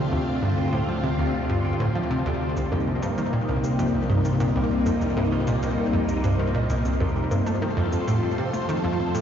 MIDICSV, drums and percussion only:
0, 0, Header, 1, 2, 480
1, 0, Start_track
1, 0, Tempo, 612245
1, 92, Time_signature, 4, 2, 24, 8
1, 7221, End_track
2, 0, Start_track
2, 0, Title_t, "Drums"
2, 2012, Note_on_c, 9, 69, 49
2, 2090, Note_off_c, 9, 69, 0
2, 2131, Note_on_c, 9, 61, 70
2, 2209, Note_off_c, 9, 61, 0
2, 2371, Note_on_c, 9, 69, 66
2, 2450, Note_off_c, 9, 69, 0
2, 2491, Note_on_c, 9, 69, 49
2, 2570, Note_off_c, 9, 69, 0
2, 2852, Note_on_c, 9, 69, 61
2, 2931, Note_off_c, 9, 69, 0
2, 2971, Note_on_c, 9, 69, 50
2, 3050, Note_off_c, 9, 69, 0
2, 3330, Note_on_c, 9, 69, 66
2, 3409, Note_off_c, 9, 69, 0
2, 3451, Note_on_c, 9, 69, 54
2, 3530, Note_off_c, 9, 69, 0
2, 3811, Note_on_c, 9, 61, 81
2, 3811, Note_on_c, 9, 69, 63
2, 3889, Note_off_c, 9, 61, 0
2, 3889, Note_off_c, 9, 69, 0
2, 3931, Note_on_c, 9, 69, 51
2, 4009, Note_off_c, 9, 69, 0
2, 4051, Note_on_c, 9, 61, 68
2, 4129, Note_off_c, 9, 61, 0
2, 4290, Note_on_c, 9, 69, 65
2, 4368, Note_off_c, 9, 69, 0
2, 4410, Note_on_c, 9, 69, 53
2, 4488, Note_off_c, 9, 69, 0
2, 4530, Note_on_c, 9, 61, 53
2, 4608, Note_off_c, 9, 61, 0
2, 4771, Note_on_c, 9, 69, 64
2, 4849, Note_off_c, 9, 69, 0
2, 4891, Note_on_c, 9, 69, 51
2, 4969, Note_off_c, 9, 69, 0
2, 5250, Note_on_c, 9, 69, 65
2, 5328, Note_off_c, 9, 69, 0
2, 5371, Note_on_c, 9, 69, 56
2, 5450, Note_off_c, 9, 69, 0
2, 5492, Note_on_c, 9, 61, 56
2, 5570, Note_off_c, 9, 61, 0
2, 5733, Note_on_c, 9, 61, 83
2, 5733, Note_on_c, 9, 69, 69
2, 5812, Note_off_c, 9, 61, 0
2, 5812, Note_off_c, 9, 69, 0
2, 5853, Note_on_c, 9, 69, 55
2, 5931, Note_off_c, 9, 69, 0
2, 5973, Note_on_c, 9, 61, 67
2, 6052, Note_off_c, 9, 61, 0
2, 6213, Note_on_c, 9, 69, 70
2, 6291, Note_off_c, 9, 69, 0
2, 6333, Note_on_c, 9, 69, 54
2, 6411, Note_off_c, 9, 69, 0
2, 6692, Note_on_c, 9, 69, 66
2, 6771, Note_off_c, 9, 69, 0
2, 6813, Note_on_c, 9, 69, 53
2, 6891, Note_off_c, 9, 69, 0
2, 7172, Note_on_c, 9, 69, 69
2, 7221, Note_off_c, 9, 69, 0
2, 7221, End_track
0, 0, End_of_file